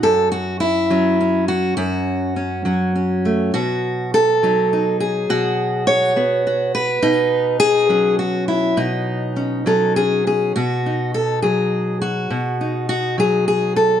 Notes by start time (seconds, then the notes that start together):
Already playing: F#4
0.03 F#2 A4
0.32 F#4
0.60 E4
0.90 F#3 C#4
1.21 C#4
1.48 F#4
1.77 F#2 F#4
2.36 C#4
2.65 F#3 C#4
2.95 C#4
3.25 A3
3.54 B2 F#4
4.14 A4
4.43 F#3 D#4
4.73 D#4
5.00 G#4
5.30 B2 F#4
5.87 C#5
6.16 B3 F#4
6.47 F#4
6.75 B4
7.02 B2 D#4
7.60 G#4
7.89 F#3 C#4
8.19 F#4
8.48 E4
8.77 B2 D#4
9.36 C#4
9.66 F#3 C#4 A4
9.96 C#4 G#4
10.27 C#4 G#4
10.56 B2 F#4
10.86 D#4
11.14 A4
11.42 F#3 G#4
12.02 F#4
12.30 B2
12.61 D#4
12.89 F#4
13.18 F#3 G#4
13.48 G#4
13.76 A4